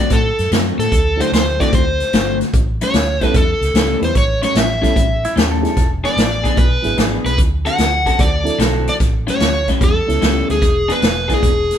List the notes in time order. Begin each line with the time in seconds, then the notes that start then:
Already playing: D5
0.00 D3 A3 C4 F#4
0.10 A2 A4, kick, snare, closed hi-hat
0.38 F#2, snare, closed hi-hat
0.51 F#2 D3 A3 C4 F#4, snare, closed hi-hat
0.78 A2 A4, snare, closed hi-hat
0.92 D2, kick, closed hi-hat
1.16 F#3 C4 D4 E4 F#4 A4, closed hi-hat
1.20 D3 A3 C4 C5, snare
1.32 D2 C5, snare, closed hi-hat
1.58 F#3 A3 C4 D4 E4 F#4 A4 D5, kick, snare, closed hi-hat
1.62 D3
1.73 D2 C5, kick, closed hi-hat
2.00 snare, closed hi-hat
2.13 G1 D3 A3 C4 F#4, snare, closed hi-hat
2.41 snare, closed hi-hat
2.53 A1, kick, closed hi-hat
2.81 A2 G3 C#4 E4 C#5, snare, closed hi-hat
2.94 D2, snare, closed hi-hat
3.21 A2 G3 B3 C#4 E4 A4 B4, kick, snare, closed hi-hat
3.34 E2 A4, kick, closed hi-hat
3.61 C#2, snare, closed hi-hat
3.74 C#2 A2 G3 C#4 E4, snare, closed hi-hat
4.00 E2 G3 B3 C#4 E4 B4, snare, closed hi-hat
4.05 C5
4.15 A1 C#5, kick, snare, closed hi-hat
4.42 A2 G3 C#4 E4 C#5, snare, closed hi-hat
4.55 A1 E5, snare, closed hi-hat
4.81 A2 G3 B3 C#4 E4 A4, kick, snare, closed hi-hat
4.96 A1, kick, closed hi-hat
5.24 E4, snare, closed hi-hat
5.36 D#2 A2 G3 C#4 E4 G4, snare, closed hi-hat
5.51 A4
5.61 F#3 B3 D4 E4 G#4, closed hi-hat
5.66 snare
5.77 E1, kick, snare, closed hi-hat
6.04 E3 B3 D4 G#4 D5, snare, closed hi-hat
6.16 A1, snare, closed hi-hat
6.44 E3 B3 D4 G#4, kick, snare, closed hi-hat
6.57 B1 B4, kick, closed hi-hat
6.83 G#1 F#3 B3 D4 E4 G#4, snare, closed hi-hat
6.97 G#1 E3 B3 D4 G#4, snare, closed hi-hat
7.24 B1 B4, snare, closed hi-hat
7.38 D2, kick, closed hi-hat
7.65 D3 C4 F#4 A4 F#5, snare, closed hi-hat
7.78 D2, snare, closed hi-hat
8.06 D3 C4 F#4 A4, kick, snare, closed hi-hat
8.19 D2 D5, kick, snare, closed hi-hat
8.44 F#3 C4 D4 E4 A4, snare, closed hi-hat
8.58 B1 D3 C4 F#4 A4, snare, closed hi-hat
8.87 D5, snare, closed hi-hat
9.00 A1, kick, snare, closed hi-hat
9.27 A2 G3 C#4 E4 C#5, snare, closed hi-hat
9.40 D2, snare, closed hi-hat
9.68 A2 G3 C#4 E4, kick, snare, closed hi-hat
9.81 E2 A4, kick, closed hi-hat
10.07 C#2 G3 B3 C#4 E4 A4, snare, closed hi-hat
10.21 C#2 A2 G3 C#4 E4, snare, closed hi-hat
10.50 D2 G#4, snare, closed hi-hat
10.62 E1, kick, snare, closed hi-hat
10.88 E3 B3 D4 G#4 B4, snare, closed hi-hat
11.02 E1, snare, closed hi-hat
11.28 E3 F#3 B3 D4 E4 G#4, kick, snare, closed hi-hat
11.34 G#4
11.43 E1, kick, closed hi-hat
11.71 snare, closed hi-hat